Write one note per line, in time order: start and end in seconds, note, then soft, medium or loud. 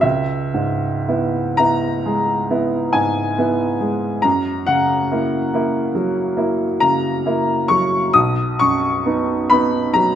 0.01 4.20 C#2 soft
0.01 1.58 E5 medium
0.54 1.39 G#2 soft
1.08 1.55 B3 soft
1.08 1.55 E4 soft
1.57 2.01 B3 soft
1.57 2.02 E4 soft
1.57 2.93 A#5 medium
2.06 2.77 G#3 soft
2.51 2.90 B3 soft
2.51 2.91 E4 soft
2.93 3.64 G#2 soft
2.93 4.23 G#5 medium
3.38 3.77 B3 soft
3.38 3.78 E4 soft
3.81 4.24 G#3 soft
4.22 8.10 F#2 soft
4.22 4.66 A#5 medium
4.67 5.37 C#3 soft
4.67 6.81 F#5 medium
5.12 5.50 A#3 soft
5.12 5.50 E4 soft
5.54 5.92 A#3 soft
5.54 5.92 E4 soft
5.95 6.64 F#3 soft
6.37 6.77 A#3 soft
6.37 6.77 E4 soft
6.80 7.52 C#3 soft
6.80 7.69 A#5 medium
7.26 7.66 A#3 soft
7.26 7.66 E4 soft
7.68 8.15 F#3 soft
7.68 8.14 C#6 medium
8.13 10.15 B1 soft
8.13 8.59 D#6 medium
8.59 9.33 F#2 soft
8.59 9.50 C#6 medium
9.06 9.47 B3 soft
9.06 9.47 D#4 soft
9.50 9.91 B3 soft
9.50 9.91 D#4 soft
9.50 9.94 B5 medium
9.94 10.15 F#3 soft
9.94 10.15 A#5 medium